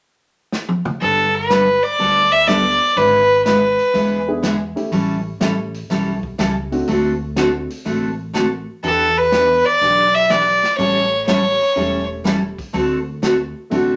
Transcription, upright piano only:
2.47 B3 D4 G4 A4
4.27 B3 D4 E4 G#4
4.76 A3 C#4 E4 G4
5.40 A3 C#4 E4 G4
6.71 A3 C4 D4 F#4
7.36 A3 C4 D4 F#4
9.31 B3 D4 E4 G4
11.75 A3 C#4 E4 G4
13.70 A3 C4 D4 F#4

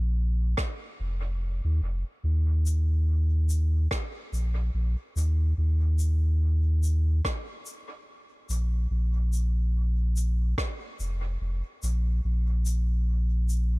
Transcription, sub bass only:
Already playing: A#1
1.00 F1
1.64 D#2
1.82 F1
2.24 D#2
4.32 A#1
4.74 A#1
5.16 D#2
5.58 D#2
8.49 A#1
8.90 A#1
10.99 F1
11.41 F1
11.83 A#1
12.24 A#1

